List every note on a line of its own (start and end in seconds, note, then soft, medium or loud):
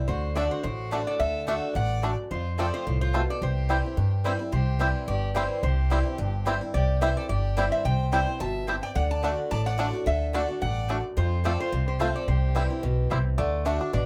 0.08 0.47 D2 medium
0.08 0.34 D3 medium
0.08 0.34 F#4 medium
0.08 0.34 C5 medium
0.35 0.62 D3 medium
0.35 0.45 A3 medium
0.35 0.63 A3 loud
0.35 0.43 A3 medium
0.35 0.63 D4 medium
0.35 0.43 D4 medium
0.35 0.46 F#4 medium
0.35 0.63 F#4 loud
0.35 0.50 A4 medium
0.35 0.50 D5 medium
0.35 0.46 D5 loud
0.35 0.46 A5 medium
0.51 0.63 F#4 medium
0.51 0.62 C5 medium
0.63 1.02 A1 medium
0.63 1.17 A2 medium
0.63 1.03 F#4 medium
0.63 1.03 C5 medium
0.91 1.18 D3 medium
0.91 1.01 A3 medium
0.91 0.99 A3 medium
0.91 1.19 A3 medium
0.91 1.19 D4 medium
0.91 0.99 D4 medium
0.91 1.01 F#4 medium
0.91 1.19 F#4 medium
0.91 1.01 D5 medium
0.91 1.02 A5 loud
1.07 1.19 A4 medium
1.07 1.20 D5 medium
1.19 1.58 D2 medium
1.19 1.46 D3 medium
1.19 1.46 A4 medium
1.19 1.47 E5 loud
1.46 1.74 D3 medium
1.46 1.57 A3 medium
1.46 1.74 A3 medium
1.46 1.54 A3 medium
1.46 1.55 D4 medium
1.46 1.74 D4 loud
1.46 1.57 F#4 medium
1.46 1.75 F#4 loud
1.46 1.73 A4 medium
1.46 1.57 D5 loud
1.46 1.76 E5 loud
1.46 1.57 A5 medium
1.75 2.13 A1 medium
1.75 2.02 G2 loud
1.75 2.15 D5 loud
1.75 2.15 F#5 loud
2.02 2.30 F#2 medium
2.02 2.12 A3 medium
2.02 2.10 A3 medium
2.02 2.10 D4 medium
2.02 2.12 F#4 medium
2.02 2.13 D5 medium
2.02 2.13 A5 loud
2.31 2.84 F2 medium
2.31 2.69 F2 medium
2.31 2.57 F4 medium
2.31 2.57 C5 medium
2.58 2.85 F3 medium
2.58 2.65 A3 medium
2.58 2.85 A3 loud
2.58 2.68 C4 medium
2.58 2.85 C4 loud
2.58 2.65 C4 medium
2.58 2.68 F4 medium
2.58 2.66 F4 medium
2.58 2.86 F4 loud
2.58 2.72 A4 medium
2.58 2.68 C5 medium
2.58 2.74 D5 medium
2.58 2.68 A5 medium
2.74 2.99 F4 medium
2.74 2.99 C5 medium
2.87 3.25 C2 medium
2.87 3.13 A2 loud
3.01 3.27 F4 medium
3.01 3.27 C5 medium
3.13 3.41 B2 medium
3.13 3.21 A3 medium
3.13 3.23 C4 medium
3.13 3.21 C4 medium
3.13 3.23 F4 medium
3.13 3.21 F4 medium
3.13 3.24 C5 loud
3.13 3.24 A5 loud
3.29 3.41 A4 medium
3.29 3.43 D5 medium
3.42 3.80 C2 medium
3.42 3.95 C3 medium
3.42 4.36 G4 medium
3.42 4.36 C5 medium
3.69 3.84 E3 medium
3.69 3.84 G3 medium
3.69 3.76 G3 medium
3.69 3.79 C4 medium
3.69 3.76 C4 medium
3.69 3.84 C4 medium
3.69 3.79 E4 medium
3.69 3.76 E4 medium
3.69 3.83 E4 medium
3.69 3.79 C5 medium
3.69 3.79 G5 medium
3.84 3.97 C4 soft
3.84 3.97 E4 medium
3.97 4.35 G2 medium
3.97 4.50 G2 loud
4.24 4.39 E3 medium
4.24 4.39 G3 medium
4.24 4.32 G3 medium
4.24 4.34 C4 medium
4.24 4.32 C4 medium
4.24 4.40 C4 loud
4.24 4.34 E4 medium
4.24 4.32 E4 medium
4.24 4.38 E4 loud
4.24 4.35 C5 medium
4.24 4.35 G5 medium
4.39 4.53 C4 soft
4.39 4.52 E4 medium
4.52 4.91 C2 medium
4.52 5.05 C3 medium
4.52 5.04 G4 medium
4.52 5.10 C5 medium
4.79 5.06 E3 medium
4.79 5.07 G3 medium
4.79 4.87 G3 medium
4.79 4.89 C4 medium
4.79 5.07 C4 loud
4.79 4.87 C4 medium
4.79 4.90 E4 medium
4.79 4.87 E4 medium
4.79 5.07 E4 loud
4.79 4.90 C5 medium
4.79 4.90 G5 medium
5.08 5.46 G1 medium
5.08 5.61 G2 loud
5.08 5.34 G4 medium
5.08 5.36 D5 medium
5.34 5.62 E3 loud
5.34 5.62 G3 loud
5.34 5.42 G3 medium
5.34 5.45 C4 medium
5.34 5.62 C4 loud
5.34 5.43 C4 medium
5.34 5.45 E4 medium
5.34 5.43 E4 medium
5.34 5.63 E4 loud
5.34 5.61 G4 medium
5.34 5.45 C5 medium
5.34 5.62 C5 medium
5.34 5.45 G5 loud
5.63 6.01 C2 medium
5.63 6.16 C3 medium
5.63 6.58 G4 medium
5.63 6.57 C5 medium
5.90 6.05 E3 medium
5.90 6.05 G3 medium
5.90 5.98 G3 medium
5.90 6.00 C4 medium
5.90 6.06 C4 loud
5.90 5.98 C4 medium
5.90 6.00 E4 medium
5.90 6.04 E4 medium
5.90 5.98 E4 medium
5.90 6.01 C5 medium
5.90 6.01 G5 medium
6.05 6.19 C4 soft
6.05 6.18 E4 medium
6.18 6.57 G1 medium
6.18 6.71 G2 loud
6.45 6.61 E3 loud
6.45 6.61 G3 loud
6.45 6.53 G3 medium
6.45 6.56 C4 medium
6.45 6.61 C4 loud
6.45 6.53 C4 medium
6.45 6.56 E4 medium
6.45 6.54 E4 medium
6.45 6.60 E4 loud
6.45 6.56 C5 medium
6.45 6.56 G5 loud
6.61 6.74 C4 medium
6.61 6.73 E4 medium
6.74 7.12 C2 medium
6.74 7.27 C3 medium
6.74 7.00 G4 medium
6.74 7.00 D5 medium
7.01 7.16 E3 medium
7.01 7.09 G3 medium
7.01 7.16 G3 medium
7.01 7.11 C4 medium
7.01 7.09 C4 medium
7.01 7.17 C4 loud
7.01 7.11 E4 medium
7.01 7.09 E4 medium
7.01 7.15 E4 loud
7.01 7.12 C5 medium
7.01 7.16 C5 loud
7.01 7.16 E5 loud
7.01 7.12 G5 loud
7.17 7.30 C4 soft
7.17 7.29 E4 medium
7.17 7.29 A4 medium
7.17 7.28 D5 medium
7.29 7.68 G1 medium
7.29 7.82 G2 loud
7.29 7.69 G4 medium
7.29 7.69 D5 loud
7.56 7.83 E3 loud
7.56 7.84 G3 loud
7.56 7.64 G3 medium
7.56 7.66 C4 medium
7.56 7.84 C4 loud
7.56 7.64 C4 medium
7.56 7.67 E4 loud
7.56 7.64 E4 medium
7.56 7.84 E4 loud
7.56 7.67 C5 medium
7.56 7.67 G5 medium
7.72 7.85 C5 medium
7.72 7.84 E5 loud
7.85 8.23 C2 loud
7.85 8.38 C3 medium
7.85 8.12 C5 medium
7.85 8.11 G5 loud
8.12 8.27 E3 medium
8.12 8.27 G3 medium
8.12 8.20 G3 medium
8.12 8.22 C4 medium
8.12 8.27 C4 medium
8.12 8.20 C4 medium
8.12 8.22 E4 medium
8.12 8.20 E4 medium
8.12 8.26 E4 loud
8.12 8.38 C5 loud
8.12 8.22 C5 loud
8.12 8.38 G5 loud
8.12 8.23 G5 loud
8.27 8.40 C4 soft
8.27 8.39 E4 medium
8.40 8.79 G1 medium
8.40 8.67 B2 loud
8.40 8.80 E5 loud
8.40 8.80 A5 loud
8.67 8.94 C3 medium
8.67 8.75 G3 medium
8.67 8.77 C4 medium
8.67 8.75 C4 medium
8.67 8.77 E4 medium
8.67 8.75 E4 medium
8.67 8.78 C5 medium
8.67 8.78 G5 loud
8.83 8.95 D5 medium
8.83 8.95 G5 loud
8.95 9.34 D2 medium
8.95 9.22 D3 medium
8.95 9.09 D5 medium
8.95 9.10 F#5 loud
9.11 9.36 D5 medium
9.11 9.36 A5 loud
9.22 9.49 D3 medium
9.22 9.33 A3 medium
9.22 9.30 A3 medium
9.22 9.50 A3 medium
9.22 9.50 D4 loud
9.22 9.30 D4 medium
9.22 9.33 F#4 medium
9.22 9.51 F#4 medium
9.22 9.33 D5 medium
9.22 9.33 A5 medium
9.51 9.89 A1 medium
9.51 10.04 A2 loud
9.51 9.66 D5 loud
9.51 9.65 A5 loud
9.66 10.06 D5 medium
9.66 10.07 F#5 loud
9.78 9.93 D3 loud
9.78 9.88 A3 medium
9.78 9.93 A3 loud
9.78 9.85 A3 medium
9.78 9.93 D4 medium
9.78 9.86 D4 medium
9.78 9.88 F#4 medium
9.78 9.92 F#4 loud
9.78 9.88 D5 medium
9.78 9.89 A5 loud
9.93 10.07 D4 medium
9.93 10.06 F#4 medium
10.06 10.45 D2 medium
10.06 10.32 D3 medium
10.06 10.32 A4 medium
10.06 10.34 E5 loud
10.33 10.48 D3 medium
10.33 10.43 A3 medium
10.33 10.48 A3 medium
10.33 10.41 A3 medium
10.33 10.49 D4 medium
10.33 10.41 D4 medium
10.33 10.44 F#4 loud
10.33 10.47 F#4 loud
10.33 10.60 A4 medium
10.33 10.44 D5 medium
10.33 10.63 D5 loud
10.33 10.44 A5 loud
10.48 10.62 D4 medium
10.48 10.61 F#4 medium
10.62 11.00 A1 medium
10.62 10.88 G2 medium
10.62 11.01 D5 loud
10.62 11.01 F#5 medium
10.88 11.16 F#2 loud
10.88 10.99 A3 medium
10.88 10.96 A3 medium
10.88 10.97 D4 medium
10.88 10.99 F#4 loud
10.88 10.99 D5 medium
10.88 10.99 A5 medium
11.17 11.70 F2 loud
11.17 11.55 F2 loud
11.17 11.43 F4 medium
11.17 11.43 C5 loud
11.44 11.71 F3 medium
11.44 11.71 A3 loud
11.44 11.52 A3 medium
11.44 11.54 C4 medium
11.44 11.71 C4 loud
11.44 11.52 C4 medium
11.44 11.54 F4 medium
11.44 11.72 F4 loud
11.44 11.52 F4 medium
11.44 11.59 A4 medium
11.44 11.54 C5 medium
11.44 11.59 D5 loud
11.44 11.55 A5 loud
11.60 11.86 F4 medium
11.60 11.86 C5 medium
11.72 12.11 C2 medium
11.72 12.25 C3 loud
11.88 11.99 G4 medium
11.88 11.99 C5 medium
11.99 12.26 F3 medium
11.99 12.27 A3 medium
11.99 12.07 A3 medium
11.99 12.09 C4 medium
11.99 12.27 C4 loud
11.99 12.07 C4 medium
11.99 12.09 F4 loud
11.99 12.07 F4 medium
11.99 12.27 F4 loud
11.99 12.10 C5 medium
11.99 12.14 C5 medium
11.99 12.14 E5 medium
11.99 12.10 A5 medium
12.15 12.27 A4 medium
12.15 12.28 D5 medium
12.28 12.66 C2 loud
12.28 12.81 C3 medium
12.28 13.07 G4 medium
12.28 13.07 C5 medium
12.55 12.69 E3 medium
12.55 12.62 G3 medium
12.55 12.70 G3 medium
12.55 12.65 C4 medium
12.55 12.70 C4 medium
12.55 12.62 C4 medium
12.55 12.65 E4 medium
12.55 12.63 E4 medium
12.55 12.69 E4 loud
12.55 12.65 C5 loud
12.55 12.65 G5 loud
12.70 12.83 C4 soft
12.70 12.82 E4 medium
12.83 13.07 B1 medium
12.83 13.09 B2 loud
13.10 13.35 C2 medium
13.10 13.37 C3 medium
13.10 13.18 G3 medium
13.10 13.20 C4 medium
13.10 13.18 C4 medium
13.10 13.20 E4 loud
13.10 13.18 E4 medium
13.10 13.20 C5 medium
13.10 13.21 G5 medium
13.38 13.77 D2 medium
13.38 13.64 D3 medium
13.38 13.78 A3 medium
13.38 13.67 D5 medium
13.65 13.80 D3 medium
13.65 13.75 A3 medium
13.65 13.80 A3 loud
13.65 13.81 D4 medium
13.65 13.81 D4 loud
13.65 13.75 F#4 medium
13.65 13.79 F#4 loud
13.65 13.76 D5 loud
13.65 13.92 E5 medium
13.65 13.76 A5 loud
13.80 13.93 D4 medium
13.80 13.94 D4 soft
13.80 13.93 F#4 medium
13.93 14.06 A1 medium
13.93 14.06 B2 loud
13.93 14.06 D4 medium
13.93 14.06 D5 medium